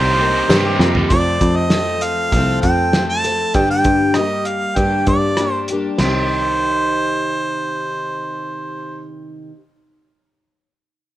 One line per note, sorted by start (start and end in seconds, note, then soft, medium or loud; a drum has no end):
0.00 0.42 C2 medium
0.00 0.34 C3 medium
0.00 0.19 D#3 medium
0.00 0.17 G3 medium
0.00 0.20 A#3 medium
0.00 0.20 C4 medium
0.00 0.18 G4 medium
0.00 1.07 G4 medium
0.00 0.20 G4 medium
0.00 0.81 C5 medium
0.00 1.09 C5 medium
0.00 1.08 D#5 medium
0.00 1.08 A#5 medium
0.06 0.18 C4 medium
0.06 0.19 D#4 medium
0.19 0.49 G3 medium
0.19 0.49 A#3 soft
0.19 0.50 C4 medium
0.19 0.50 C4 soft
0.19 0.50 D#4 medium
0.19 0.49 G4 soft
0.19 0.51 G4 medium
0.49 0.77 G2 medium
0.49 0.80 C3 medium
0.49 0.95 C3 medium
0.49 0.80 D#3 medium
0.49 0.81 G3 medium
0.49 0.80 A#3 medium
0.49 0.80 C4 medium
0.49 0.67 C4 medium
0.49 0.66 D#4 loud
0.49 0.79 G4 medium
0.49 0.64 G4 loud
0.49 snare loud
0.49 tambourine loud
0.49 crash medium
0.66 0.81 C4 medium
0.66 0.82 D#4 medium
0.66 0.83 G4 medium
0.79 1.07 F2 medium
0.79 1.09 G3 medium
0.79 1.11 C4 medium
0.79 0.98 C4 medium
0.79 0.96 D#4 medium
0.79 1.10 G4 medium
0.79 snare medium
0.84 1.11 A#3 soft
0.84 0.96 G4 medium
0.95 1.10 C4 medium
0.95 1.10 D#4 medium
0.95 1.09 G4 medium
0.95 floor tom loud
1.09 1.71 F2 medium
1.09 1.38 F2 medium
1.09 1.72 C3 medium
1.09 1.71 F3 medium
1.09 1.71 A3 medium
1.09 1.71 C4 medium
1.09 1.72 A4 medium
1.09 1.58 D5 medium
1.09 kick loud
1.09 closed hi-hat medium
1.41 2.34 F2 medium
1.41 kick medium
1.41 closed hi-hat medium
1.57 2.05 D#5 medium
1.70 2.33 F3 medium
1.70 2.33 A3 medium
1.70 2.33 C4 medium
1.70 2.34 A4 medium
1.70 snare loud
1.70 closed hi-hat medium
2.01 2.61 F5 medium
2.01 closed hi-hat medium
2.32 2.59 C2 medium
2.32 2.95 F2 medium
2.32 2.95 C3 medium
2.32 2.93 F3 medium
2.32 2.95 A3 medium
2.32 2.95 C4 medium
2.32 kick medium
2.32 closed hi-hat medium
2.37 2.96 A4 medium
2.61 3.44 F2 medium
2.61 3.05 G5 medium
2.61 kick medium
2.61 closed hi-hat soft
2.93 3.25 F3 soft
2.93 3.25 A3 medium
2.93 3.25 C4 medium
2.93 snare medium
2.93 closed hi-hat medium
2.98 3.23 A4 medium
3.10 3.52 A5 medium
3.24 3.56 F3 soft
3.24 3.56 A3 soft
3.24 3.56 C4 soft
3.24 3.55 A4 medium
3.24 closed hi-hat medium
3.54 3.82 G2 medium
3.54 4.16 G2 medium
3.54 4.17 D3 medium
3.54 4.15 G3 medium
3.54 4.16 A#3 medium
3.54 3.69 G5 medium
3.54 kick medium
3.54 closed hi-hat medium
3.59 4.18 D4 medium
3.59 4.18 G4 medium
3.70 4.18 G5 loud
3.84 4.66 G2 medium
3.84 kick medium
3.84 closed hi-hat medium
4.14 4.77 G3 medium
4.14 4.78 A#3 medium
4.14 4.48 D#5 medium
4.14 cross-stick medium
4.14 closed hi-hat medium
4.21 4.79 G4 medium
4.45 4.78 F5 medium
4.45 closed hi-hat medium
4.76 5.04 G2 medium
4.76 5.39 G2 medium
4.76 5.39 D3 medium
4.76 5.38 G3 medium
4.76 5.38 A#3 medium
4.76 5.39 D4 medium
4.76 5.40 G4 medium
4.76 5.07 G5 medium
4.76 kick medium
4.76 closed hi-hat medium
5.07 5.88 G2 medium
5.07 5.53 D5 medium
5.07 kick medium
5.07 closed hi-hat soft
5.37 5.69 G3 soft
5.37 5.69 A#3 soft
5.37 5.70 D4 medium
5.37 cross-stick medium
5.37 closed hi-hat medium
5.41 5.69 G4 medium
5.53 5.65 C5 medium
5.68 6.00 G4 soft
5.68 closed hi-hat medium
5.72 6.01 G3 soft
5.72 6.01 A#3 soft
5.72 6.01 D4 soft
5.98 9.07 C2 medium
5.98 9.50 C3 medium
5.98 9.52 D#3 medium
5.98 9.06 C5 medium
5.98 snare medium
5.98 crash medium
6.03 9.53 C4 medium
6.03 9.55 D#4 medium
6.03 9.55 G4 medium